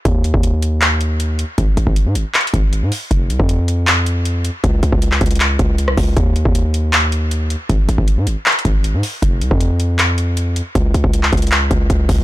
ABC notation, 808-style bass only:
X:1
M:4/4
L:1/16
Q:1/4=157
K:Fm
V:1 name="808-style bass" clef=bass
E,,3 E,,12 z | A,,,2 A,,, A,,,2 A,, A,,, z3 A,,,3 A,, z2 | F,,,2 C,, F,,12 z | D,,2 D,, D,,3 D,,4 D,,3 C,, D,,2 |
E,,3 E,,12 z | A,,,2 A,,, A,,,2 A,, A,,, z3 A,,,3 A,, z2 | F,,,2 C,, F,,12 z | D,,2 D,, D,,3 D,,4 D,,2 D,,2 D,,2 |]